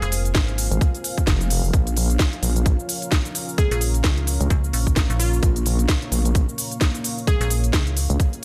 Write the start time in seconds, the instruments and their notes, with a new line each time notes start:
Already playing: analog synth pad G#3 C4 F4 A#4, ambient pad F4 C5 F5 G#5
0.02 fm bass F1, synth pluck G#4, closed hi-hat, cabasa
0.12 open hi-hat, cabasa
0.25 closed hi-hat, cabasa
0.35 fm bass G#1, kick, snare, closed hi-hat, cabasa
0.48 closed hi-hat
0.58 open hi-hat, cabasa
0.71 wobble bass G#1, closed hi-hat, cabasa
0.81 kick, closed hi-hat, cabasa
0.95 closed hi-hat, cabasa
1.04 open hi-hat, cabasa
1.18 kick, closed hi-hat, cabasa
1.27 wobble bass F1, kick, snare, closed hi-hat, cabasa
1.41 closed hi-hat, cabasa
1.50 open hi-hat, cabasa
1.64 wobble bass F1, cabasa
1.73 wobble bass A#1, analog synth pad A#3 C#4 F4 C#5, ambient pad A#4, kick, closed hi-hat, cabasa
1.87 closed hi-hat, cabasa
1.92 ambient pad C#6
1.97 open hi-hat, cabasa
2.10 closed hi-hat, cabasa
2.19 kick, snare, closed hi-hat, cabasa
2.33 closed hi-hat
2.43 wobble bass A#1, open hi-hat, cabasa
2.56 closed hi-hat, cabasa
2.66 kick, closed hi-hat, cabasa
2.80 cabasa
2.89 open hi-hat, cabasa
3.02 closed hi-hat, cabasa
3.12 kick, snare, closed hi-hat, cabasa
3.25 closed hi-hat, cabasa
3.35 open hi-hat, cabasa
3.49 cabasa
3.58 synth pluck G#4, kick, closed hi-hat, cabasa
3.71 fm bass A#1, synth pluck G#4, closed hi-hat, cabasa
3.81 open hi-hat, cabasa
3.94 closed hi-hat, cabasa
4.04 fm bass C#2, kick, snare, closed hi-hat, cabasa
4.18 closed hi-hat
4.27 open hi-hat, cabasa
4.41 wobble bass C#2, closed hi-hat, cabasa
4.50 fm bass C#2, kick, closed hi-hat, cabasa
4.64 cabasa
4.73 fm bass A#1, open hi-hat, cabasa
4.87 kick, closed hi-hat, cabasa
4.96 kick, snare, closed hi-hat, cabasa
5.10 fm bass A#1, closed hi-hat, cabasa
5.20 synth pluck F4, open hi-hat, cabasa
5.33 cabasa
5.43 wobble bass A#1, kick, closed hi-hat, cabasa
5.56 closed hi-hat, cabasa
5.66 open hi-hat, cabasa
5.79 closed hi-hat, cabasa
5.89 kick, snare, closed hi-hat, cabasa
6.02 closed hi-hat
6.12 wobble bass A#1, open hi-hat, cabasa
6.25 closed hi-hat, cabasa
6.35 kick, closed hi-hat, cabasa
6.49 cabasa
6.58 open hi-hat, cabasa
6.71 closed hi-hat, cabasa
6.81 kick, snare, closed hi-hat, cabasa
6.95 closed hi-hat, cabasa
7.04 open hi-hat, cabasa
7.18 cabasa
7.27 synth pluck G#4, kick, closed hi-hat, cabasa
7.41 fm bass A#1, synth pluck G#4, closed hi-hat, cabasa
7.50 open hi-hat, cabasa
7.64 closed hi-hat, cabasa
7.73 fm bass C#2, kick, snare, closed hi-hat, cabasa
7.87 closed hi-hat
7.97 open hi-hat, cabasa
8.10 wobble bass C#2, closed hi-hat, cabasa
8.20 kick, closed hi-hat, cabasa
8.33 closed hi-hat, cabasa